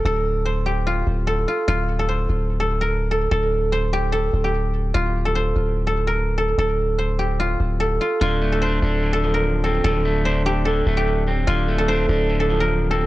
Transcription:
<<
  \new Staff \with { instrumentName = "Guzheng" } { \time 4/4 \key d \minor \tempo 4 = 147 a'4 c''8 g'8 f'4 a'8 f'8 | f'8. a'16 c''4~ c''16 a'8 bes'8. a'8 | a'4 c''8 g'8 a'8. g'4~ g'16 | f'8. a'16 c''4~ c''16 a'8 bes'8. a'8 |
a'4 c''8 g'8 f'4 a'8 f'8 | f'8. a'16 c''4~ c''16 a'8 bes'8. a'8 | a'4 c''8 g'8 a'8. g'4~ g'16 | f'8. a'16 c''4~ c''16 a'8 bes'8. a'8 | }
  \new Staff \with { instrumentName = "Clean electric guitar" } { \time 4/4 \key d \minor r1 | r1 | r1 | r1 |
r1 | d8 a8 d'8 d'8 d8 f4 c'8 | d8 a8 d'8 d'8 d8 a4 c'8 | d8 a8 d'8 d'8 d8 f4 c'8 | }
  \new Staff \with { instrumentName = "808-style bass" } { \clef bass \time 4/4 \key d \minor d,,2~ d,,8 d,,4 r8 | d,,4. d,,2~ d,,8 | d,,2~ d,,8 d,,4. | d,,4. d,,2~ d,,8 |
d,,2~ d,,8 d,,4 r8 | d,,4. d,,2~ d,,8 | d,,2~ d,,8 d,,4. | d,,4. d,,2~ d,,8 | }
>>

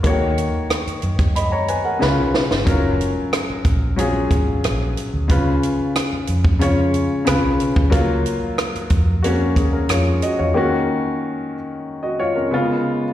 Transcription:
<<
  \new Staff \with { instrumentName = "Grand piano" } { \time 4/4 \key fis \major \tempo 4 = 91 << { r2 <dis'' b''>16 <cis'' ais''>16 <b' gis''>16 <ais' fis''>8 r8. | r1 | r1 | r2 r8 gis'16 <cis' ais'>16 <eis' cis''>8 <fis' dis''>16 <eis' cis''>16~ |
<eis' cis''>16 r2 <fis' dis''>16 <eis' cis''>16 <cis' ais'>8 r8. | } \\ { <d dis ais fis' cis''>4. r4. <cis cis' e' eis' b'>4 | <fis cis' eis' ais'>4. r8 <fis cis' eis' gis'>4. r8 | <cis cis' eis' b'>4. r8 <cis cis' eis' cis''>4 <cis cis' eis' b'>4 | <fis ais eis'>4. r8 <ais cis' fis'>4. r8 |
<dis ais cis' fis'>4. r4. <cis gis b eis'>4 | } >> }
  \new Staff \with { instrumentName = "Fingered electric bass" } { \clef bass \time 4/4 \key fis \major dis,8. r8. fis,4~ fis,16 r16 cis,16 b,,16 r16 g,,16 | fis,,8. r8. ais,,4 gis,,8 ais,,8 r16 d,16 | cis,8. r8. eis,4~ eis,16 r16 cis,16 b,,16 r16 d,16 | cis,8. r8. eis,4 dis,8 eis,8 r16 e,16 |
r1 | }
  \new DrumStaff \with { instrumentName = "Drums" } \drummode { \time 4/4 <hh bd>8 hh8 <hh ss>16 hh16 hh16 <hh bd ss>16 hh8 hh8 sn8 sn16 sn16 | <hh bd>8 hh8 <hh ss>8 <hh bd>8 hh8 <hh bd>8 <hh ss>8 hh8 | <hh bd>8 hh8 <hh ss>8 hh16 bd16 hh8 hh8 <hh ss>8 hh16 bd16 | <hh bd>8 hh8 <hh ss>16 hh16 <hh bd>8 hh8 <hh bd>8 <hh ss>8 hh8 |
r4 r4 r4 r4 | }
>>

